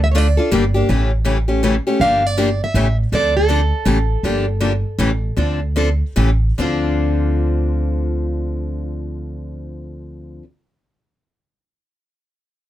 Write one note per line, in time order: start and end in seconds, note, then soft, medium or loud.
0.00 0.37 D2 medium
0.00 0.07 E5 medium
0.11 0.26 D3 medium
0.11 0.26 A3 medium
0.11 0.26 D4 medium
0.11 0.26 F4 medium
0.11 0.18 C#5 medium
0.15 0.26 A4 medium
0.15 0.90 D5 medium
0.37 0.52 D4 soft
0.37 0.52 F4 medium
0.37 0.51 A4 medium
0.52 0.82 G1 medium
0.52 0.63 D3 medium
0.52 0.63 G3 medium
0.52 0.63 A#3 medium
0.52 0.64 D4 medium
0.52 0.64 G4 medium
0.74 0.89 A#3 soft
0.74 0.89 D4 medium
0.74 0.88 G4 medium
0.89 1.78 A1 medium
0.89 1.10 C#3 medium
0.89 1.10 E3 medium
0.89 1.10 A3 medium
0.89 1.10 C#4 medium
0.89 1.11 G4 medium
1.25 1.36 C#3 medium
1.25 1.37 E3 medium
1.25 1.37 A3 medium
1.25 1.37 C#4 medium
1.25 1.37 G4 medium
1.48 1.62 A3 soft
1.48 1.62 C#4 medium
1.48 1.62 G4 medium
1.63 1.74 C#3 medium
1.63 1.75 E3 medium
1.63 1.74 A3 medium
1.63 1.75 C#4 medium
1.63 1.75 G4 medium
1.87 2.01 A3 soft
1.87 2.00 C#4 medium
1.87 2.00 G4 medium
2.00 2.59 G1 medium
2.00 2.22 D3 medium
2.00 2.22 F3 medium
2.00 2.22 A#3 medium
2.00 2.22 D4 medium
2.00 2.22 G4 medium
2.00 2.27 F5 loud
2.27 2.63 D5 medium
2.37 2.49 D3 medium
2.37 2.48 F3 medium
2.37 2.49 A#3 medium
2.37 2.49 D4 medium
2.37 2.49 G4 medium
2.64 2.97 E5 loud
2.74 3.04 A1 medium
2.74 2.86 C#3 medium
2.74 2.86 E3 medium
2.74 2.86 A3 medium
2.74 2.86 C#4 medium
2.74 2.86 G4 medium
3.12 3.71 D2 medium
3.12 3.33 D3 medium
3.12 3.33 F3 medium
3.12 3.33 C4 medium
3.12 3.33 D4 medium
3.12 3.33 A4 medium
3.12 3.35 D5 medium
3.37 6.14 A4 medium
3.49 3.60 D3 medium
3.49 3.60 F3 medium
3.49 3.60 C4 medium
3.49 3.60 D4 medium
3.49 3.60 A4 medium
3.85 4.15 A1 medium
3.85 3.96 C#3 medium
3.85 3.97 E3 medium
3.85 3.97 A3 medium
3.85 3.97 C#4 medium
3.85 3.98 G4 medium
4.23 4.83 G1 medium
4.23 4.44 D3 medium
4.23 4.44 F3 medium
4.23 4.45 A#3 medium
4.23 4.45 D4 medium
4.23 4.45 G4 medium
4.60 4.71 D3 medium
4.60 4.71 F3 medium
4.60 4.71 A#3 medium
4.60 4.72 D4 medium
4.60 4.72 G4 medium
4.99 5.29 A1 medium
4.99 5.09 C#3 medium
4.99 5.10 E3 medium
4.99 5.10 A3 medium
4.99 5.10 C#4 medium
4.99 5.10 G4 medium
5.36 6.01 D2 medium
5.36 5.59 D3 medium
5.36 5.59 F3 medium
5.36 5.59 C4 medium
5.36 5.59 D4 medium
5.36 5.59 A4 medium
5.76 5.88 D3 medium
5.76 5.88 F3 medium
5.76 5.88 C4 medium
5.76 5.88 D4 medium
5.76 5.89 A4 medium
6.16 6.51 A1 medium
6.16 6.29 C#3 medium
6.16 6.29 E3 medium
6.16 6.29 A3 medium
6.16 6.29 C#4 medium
6.16 6.29 G4 medium
6.58 10.39 D2 medium
6.58 10.42 D3 medium
6.58 10.43 F3 medium
6.58 10.44 C4 medium
6.58 10.44 D4 medium
6.58 10.45 A4 medium
6.62 10.42 F4 medium